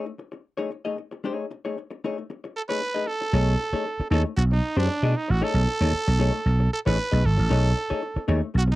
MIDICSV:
0, 0, Header, 1, 6, 480
1, 0, Start_track
1, 0, Tempo, 522648
1, 1136, Time_signature, 4, 2, 24, 8
1, 8040, End_track
2, 0, Start_track
2, 0, Title_t, "Trumpet"
2, 0, Program_c, 0, 56
2, 2353, Note_on_c, 0, 69, 86
2, 2408, Note_off_c, 0, 69, 0
2, 2471, Note_on_c, 0, 71, 108
2, 2819, Note_on_c, 0, 69, 101
2, 2832, Note_off_c, 0, 71, 0
2, 3763, Note_off_c, 0, 69, 0
2, 3768, Note_on_c, 0, 69, 96
2, 3880, Note_off_c, 0, 69, 0
2, 4008, Note_on_c, 0, 66, 88
2, 4069, Note_off_c, 0, 66, 0
2, 4153, Note_on_c, 0, 63, 90
2, 4375, Note_off_c, 0, 63, 0
2, 4389, Note_on_c, 0, 62, 96
2, 4745, Note_on_c, 0, 63, 87
2, 4759, Note_off_c, 0, 62, 0
2, 4874, Note_on_c, 0, 66, 95
2, 4888, Note_off_c, 0, 63, 0
2, 4992, Note_on_c, 0, 69, 109
2, 5006, Note_off_c, 0, 66, 0
2, 6177, Note_off_c, 0, 69, 0
2, 6183, Note_on_c, 0, 69, 93
2, 6239, Note_off_c, 0, 69, 0
2, 6307, Note_on_c, 0, 71, 103
2, 6662, Note_on_c, 0, 69, 98
2, 6676, Note_off_c, 0, 71, 0
2, 7610, Note_off_c, 0, 69, 0
2, 7878, Note_on_c, 0, 66, 99
2, 7929, Note_off_c, 0, 66, 0
2, 8006, Note_on_c, 0, 63, 82
2, 8040, Note_off_c, 0, 63, 0
2, 8040, End_track
3, 0, Start_track
3, 0, Title_t, "Hollow-body jazz guitar"
3, 0, Program_c, 1, 26
3, 0, Note_on_c, 1, 57, 61
3, 99, Note_off_c, 1, 57, 0
3, 527, Note_on_c, 1, 73, 76
3, 534, Note_on_c, 1, 68, 72
3, 540, Note_on_c, 1, 63, 67
3, 544, Note_on_c, 1, 57, 61
3, 640, Note_off_c, 1, 63, 0
3, 641, Note_off_c, 1, 57, 0
3, 647, Note_off_c, 1, 68, 0
3, 650, Note_off_c, 1, 73, 0
3, 779, Note_on_c, 1, 75, 75
3, 783, Note_on_c, 1, 68, 64
3, 787, Note_on_c, 1, 63, 62
3, 794, Note_on_c, 1, 57, 55
3, 883, Note_off_c, 1, 57, 0
3, 891, Note_off_c, 1, 63, 0
3, 892, Note_off_c, 1, 68, 0
3, 900, Note_off_c, 1, 75, 0
3, 1137, Note_on_c, 1, 57, 66
3, 1146, Note_on_c, 1, 63, 78
3, 1149, Note_on_c, 1, 68, 75
3, 1153, Note_on_c, 1, 73, 87
3, 1324, Note_off_c, 1, 57, 0
3, 1328, Note_off_c, 1, 63, 0
3, 1330, Note_off_c, 1, 68, 0
3, 1332, Note_off_c, 1, 73, 0
3, 1513, Note_on_c, 1, 73, 53
3, 1519, Note_on_c, 1, 68, 54
3, 1521, Note_on_c, 1, 63, 45
3, 1522, Note_on_c, 1, 57, 44
3, 1620, Note_off_c, 1, 57, 0
3, 1623, Note_off_c, 1, 63, 0
3, 1625, Note_off_c, 1, 68, 0
3, 1631, Note_off_c, 1, 73, 0
3, 1877, Note_on_c, 1, 57, 69
3, 1877, Note_on_c, 1, 63, 72
3, 1884, Note_on_c, 1, 68, 69
3, 1889, Note_on_c, 1, 73, 83
3, 1992, Note_off_c, 1, 73, 0
3, 1993, Note_off_c, 1, 68, 0
3, 2000, Note_off_c, 1, 63, 0
3, 2043, Note_off_c, 1, 57, 0
3, 2470, Note_on_c, 1, 73, 68
3, 2481, Note_on_c, 1, 68, 77
3, 2482, Note_on_c, 1, 63, 62
3, 2488, Note_on_c, 1, 57, 66
3, 2578, Note_off_c, 1, 63, 0
3, 2579, Note_off_c, 1, 57, 0
3, 2582, Note_off_c, 1, 68, 0
3, 2586, Note_off_c, 1, 73, 0
3, 2704, Note_on_c, 1, 75, 74
3, 2713, Note_on_c, 1, 68, 66
3, 2716, Note_on_c, 1, 63, 60
3, 2720, Note_on_c, 1, 57, 61
3, 2809, Note_off_c, 1, 57, 0
3, 2813, Note_off_c, 1, 68, 0
3, 2814, Note_off_c, 1, 63, 0
3, 2830, Note_off_c, 1, 75, 0
3, 3058, Note_on_c, 1, 57, 77
3, 3064, Note_on_c, 1, 68, 101
3, 3065, Note_on_c, 1, 63, 83
3, 3070, Note_on_c, 1, 73, 94
3, 3235, Note_off_c, 1, 57, 0
3, 3238, Note_off_c, 1, 68, 0
3, 3239, Note_off_c, 1, 63, 0
3, 3241, Note_off_c, 1, 73, 0
3, 3427, Note_on_c, 1, 73, 64
3, 3430, Note_on_c, 1, 68, 63
3, 3435, Note_on_c, 1, 63, 52
3, 3437, Note_on_c, 1, 57, 58
3, 3529, Note_off_c, 1, 57, 0
3, 3535, Note_off_c, 1, 63, 0
3, 3537, Note_off_c, 1, 73, 0
3, 3539, Note_off_c, 1, 68, 0
3, 3778, Note_on_c, 1, 57, 85
3, 3781, Note_on_c, 1, 63, 96
3, 3785, Note_on_c, 1, 68, 88
3, 3793, Note_on_c, 1, 73, 86
3, 3897, Note_off_c, 1, 73, 0
3, 3904, Note_off_c, 1, 68, 0
3, 3909, Note_off_c, 1, 63, 0
3, 3955, Note_off_c, 1, 57, 0
3, 4378, Note_on_c, 1, 73, 91
3, 4382, Note_on_c, 1, 68, 80
3, 4384, Note_on_c, 1, 63, 71
3, 4391, Note_on_c, 1, 57, 61
3, 4480, Note_off_c, 1, 57, 0
3, 4481, Note_off_c, 1, 63, 0
3, 4486, Note_off_c, 1, 68, 0
3, 4489, Note_off_c, 1, 73, 0
3, 4618, Note_on_c, 1, 75, 69
3, 4621, Note_on_c, 1, 68, 74
3, 4624, Note_on_c, 1, 57, 57
3, 4624, Note_on_c, 1, 63, 59
3, 4715, Note_off_c, 1, 57, 0
3, 4715, Note_off_c, 1, 63, 0
3, 4718, Note_off_c, 1, 68, 0
3, 4729, Note_off_c, 1, 75, 0
3, 4971, Note_on_c, 1, 57, 78
3, 4974, Note_on_c, 1, 63, 85
3, 4974, Note_on_c, 1, 68, 84
3, 4981, Note_on_c, 1, 73, 84
3, 5150, Note_off_c, 1, 57, 0
3, 5152, Note_off_c, 1, 63, 0
3, 5152, Note_off_c, 1, 68, 0
3, 5155, Note_off_c, 1, 73, 0
3, 5339, Note_on_c, 1, 73, 63
3, 5343, Note_on_c, 1, 68, 58
3, 5347, Note_on_c, 1, 57, 51
3, 5351, Note_on_c, 1, 63, 56
3, 5436, Note_off_c, 1, 57, 0
3, 5440, Note_off_c, 1, 63, 0
3, 5442, Note_off_c, 1, 68, 0
3, 5448, Note_off_c, 1, 73, 0
3, 5684, Note_on_c, 1, 57, 85
3, 5687, Note_on_c, 1, 63, 89
3, 5691, Note_on_c, 1, 68, 92
3, 5698, Note_on_c, 1, 73, 110
3, 5802, Note_off_c, 1, 73, 0
3, 5809, Note_off_c, 1, 68, 0
3, 5812, Note_off_c, 1, 63, 0
3, 5866, Note_off_c, 1, 57, 0
3, 6302, Note_on_c, 1, 73, 97
3, 6303, Note_on_c, 1, 68, 82
3, 6309, Note_on_c, 1, 63, 80
3, 6313, Note_on_c, 1, 57, 73
3, 6398, Note_off_c, 1, 57, 0
3, 6401, Note_off_c, 1, 63, 0
3, 6409, Note_off_c, 1, 68, 0
3, 6409, Note_off_c, 1, 73, 0
3, 6536, Note_on_c, 1, 75, 83
3, 6540, Note_on_c, 1, 68, 75
3, 6542, Note_on_c, 1, 63, 77
3, 6549, Note_on_c, 1, 57, 64
3, 6632, Note_off_c, 1, 57, 0
3, 6638, Note_off_c, 1, 63, 0
3, 6640, Note_off_c, 1, 68, 0
3, 6651, Note_off_c, 1, 75, 0
3, 6883, Note_on_c, 1, 57, 79
3, 6889, Note_on_c, 1, 63, 107
3, 6895, Note_on_c, 1, 68, 95
3, 6897, Note_on_c, 1, 73, 105
3, 7063, Note_off_c, 1, 57, 0
3, 7066, Note_off_c, 1, 63, 0
3, 7069, Note_off_c, 1, 68, 0
3, 7070, Note_off_c, 1, 73, 0
3, 7256, Note_on_c, 1, 73, 77
3, 7259, Note_on_c, 1, 68, 68
3, 7268, Note_on_c, 1, 63, 58
3, 7269, Note_on_c, 1, 57, 53
3, 7356, Note_off_c, 1, 57, 0
3, 7360, Note_off_c, 1, 68, 0
3, 7362, Note_off_c, 1, 63, 0
3, 7363, Note_off_c, 1, 73, 0
3, 7603, Note_on_c, 1, 57, 85
3, 7606, Note_on_c, 1, 63, 105
3, 7609, Note_on_c, 1, 68, 96
3, 7612, Note_on_c, 1, 73, 93
3, 7715, Note_off_c, 1, 73, 0
3, 7723, Note_off_c, 1, 68, 0
3, 7725, Note_off_c, 1, 63, 0
3, 7781, Note_off_c, 1, 57, 0
3, 8040, End_track
4, 0, Start_track
4, 0, Title_t, "Slap bass"
4, 0, Program_c, 2, 36
4, 3059, Note_on_c, 2, 35, 96
4, 3256, Note_off_c, 2, 35, 0
4, 3774, Note_on_c, 2, 39, 84
4, 3882, Note_off_c, 2, 39, 0
4, 4016, Note_on_c, 2, 35, 92
4, 4214, Note_off_c, 2, 35, 0
4, 4377, Note_on_c, 2, 42, 86
4, 4474, Note_off_c, 2, 42, 0
4, 4618, Note_on_c, 2, 47, 89
4, 4715, Note_off_c, 2, 47, 0
4, 4868, Note_on_c, 2, 33, 101
4, 4960, Note_off_c, 2, 33, 0
4, 5089, Note_on_c, 2, 35, 91
4, 5189, Note_off_c, 2, 35, 0
4, 5333, Note_on_c, 2, 39, 92
4, 5431, Note_off_c, 2, 39, 0
4, 5581, Note_on_c, 2, 35, 100
4, 5779, Note_off_c, 2, 35, 0
4, 5930, Note_on_c, 2, 35, 90
4, 6128, Note_off_c, 2, 35, 0
4, 6305, Note_on_c, 2, 33, 86
4, 6396, Note_off_c, 2, 33, 0
4, 6544, Note_on_c, 2, 35, 88
4, 6635, Note_off_c, 2, 35, 0
4, 6659, Note_on_c, 2, 32, 90
4, 6761, Note_off_c, 2, 32, 0
4, 6786, Note_on_c, 2, 33, 100
4, 6876, Note_off_c, 2, 33, 0
4, 6896, Note_on_c, 2, 35, 101
4, 7091, Note_off_c, 2, 35, 0
4, 7609, Note_on_c, 2, 39, 92
4, 7714, Note_off_c, 2, 39, 0
4, 7850, Note_on_c, 2, 35, 99
4, 8040, Note_off_c, 2, 35, 0
4, 8040, End_track
5, 0, Start_track
5, 0, Title_t, "Muted hollow-body jazz guitar strokes"
5, 55, Note_on_c, 9, 29, 35
5, 146, Note_off_c, 9, 29, 0
5, 169, Note_on_c, 9, 29, 31
5, 261, Note_off_c, 9, 29, 0
5, 293, Note_on_c, 9, 29, 35
5, 385, Note_off_c, 9, 29, 0
5, 651, Note_on_c, 9, 29, 32
5, 743, Note_off_c, 9, 29, 0
5, 894, Note_on_c, 9, 29, 34
5, 986, Note_off_c, 9, 29, 0
5, 1023, Note_on_c, 9, 29, 42
5, 1115, Note_off_c, 9, 29, 0
5, 1383, Note_on_c, 9, 29, 42
5, 1475, Note_off_c, 9, 29, 0
5, 1631, Note_on_c, 9, 29, 36
5, 1723, Note_off_c, 9, 29, 0
5, 1750, Note_on_c, 9, 29, 48
5, 1842, Note_off_c, 9, 29, 0
5, 2003, Note_on_c, 9, 29, 44
5, 2095, Note_off_c, 9, 29, 0
5, 2112, Note_on_c, 9, 29, 37
5, 2204, Note_off_c, 9, 29, 0
5, 2241, Note_on_c, 9, 29, 43
5, 2333, Note_off_c, 9, 29, 0
5, 2589, Note_on_c, 9, 29, 35
5, 2681, Note_off_c, 9, 29, 0
5, 2820, Note_on_c, 9, 29, 33
5, 2912, Note_off_c, 9, 29, 0
5, 2949, Note_on_c, 9, 29, 42
5, 3041, Note_off_c, 9, 29, 0
5, 3298, Note_on_c, 9, 29, 44
5, 3389, Note_off_c, 9, 29, 0
5, 3540, Note_on_c, 9, 29, 42
5, 3632, Note_off_c, 9, 29, 0
5, 3676, Note_on_c, 9, 29, 42
5, 3768, Note_off_c, 9, 29, 0
5, 3908, Note_on_c, 9, 29, 44
5, 4000, Note_off_c, 9, 29, 0
5, 4026, Note_on_c, 9, 29, 42
5, 4117, Note_off_c, 9, 29, 0
5, 4147, Note_on_c, 9, 29, 36
5, 4239, Note_off_c, 9, 29, 0
5, 4491, Note_on_c, 9, 29, 43
5, 4583, Note_off_c, 9, 29, 0
5, 4726, Note_on_c, 9, 29, 46
5, 4818, Note_off_c, 9, 29, 0
5, 4852, Note_on_c, 9, 29, 50
5, 4944, Note_off_c, 9, 29, 0
5, 5209, Note_on_c, 9, 29, 55
5, 5301, Note_off_c, 9, 29, 0
5, 5579, Note_on_c, 9, 29, 55
5, 5671, Note_off_c, 9, 29, 0
5, 5813, Note_on_c, 9, 29, 41
5, 5905, Note_off_c, 9, 29, 0
5, 5929, Note_on_c, 9, 29, 43
5, 6021, Note_off_c, 9, 29, 0
5, 6060, Note_on_c, 9, 29, 47
5, 6152, Note_off_c, 9, 29, 0
5, 6409, Note_on_c, 9, 29, 45
5, 6501, Note_off_c, 9, 29, 0
5, 6773, Note_on_c, 9, 29, 50
5, 6865, Note_off_c, 9, 29, 0
5, 7130, Note_on_c, 9, 29, 37
5, 7222, Note_off_c, 9, 29, 0
5, 7367, Note_on_c, 9, 29, 40
5, 7459, Note_off_c, 9, 29, 0
5, 7499, Note_on_c, 9, 29, 54
5, 7591, Note_off_c, 9, 29, 0
5, 7726, Note_on_c, 9, 29, 47
5, 7818, Note_off_c, 9, 29, 0
5, 7842, Note_on_c, 9, 29, 48
5, 7934, Note_off_c, 9, 29, 0
5, 7968, Note_on_c, 9, 29, 41
5, 8040, Note_off_c, 9, 29, 0
5, 8040, End_track
6, 0, Start_track
6, 0, Title_t, "Muted slap bass strokes"
6, 3423, Note_on_c, 9, 29, 53
6, 3515, Note_off_c, 9, 29, 0
6, 3670, Note_on_c, 9, 29, 53
6, 3762, Note_off_c, 9, 29, 0
6, 5448, Note_on_c, 9, 29, 48
6, 5540, Note_off_c, 9, 29, 0
6, 7265, Note_on_c, 9, 29, 50
6, 7357, Note_off_c, 9, 29, 0
6, 7497, Note_on_c, 9, 29, 55
6, 7589, Note_off_c, 9, 29, 0
6, 8040, End_track
0, 0, End_of_file